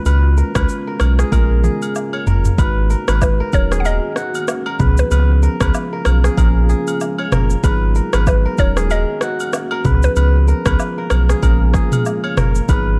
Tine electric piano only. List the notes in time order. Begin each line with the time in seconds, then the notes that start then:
0.05 G#3 C#4 F4 B4
0.55 G#3 C#4 F4 B4
1.00 G#3 C#4 F4 B4
1.32 G#3 C#4 F4 A#4
2.58 G#3 D#4 F#4 B4
3.08 G#3 D#4 F#4
3.53 F#3 C#4 D#4 A#4
4.79 F3 B3 C#4 G#4
5.10 F3 B3 C#4 G#4
5.61 F3 B3 C#4 G#4
6.06 F3 B3 C#4 G#4
6.37 F3 A#3 C#4 G#4
7.32 F3 A#3 C#4 G#4
7.63 F#3 B3 D#4 G#4
8.13 F#3 B3 D#4 G#4
8.58 F#3 C#4 D#4 A#4
9.84 F3 B3 C#4 G#4
10.16 F3 B3 C#4 G#4
10.66 F3 B3 C#4 G#4
11.11 F3 B3 C#4 G#4
11.42 F3 A#3 C#4 G#4
12.69 F#3 B3 D#4 G#4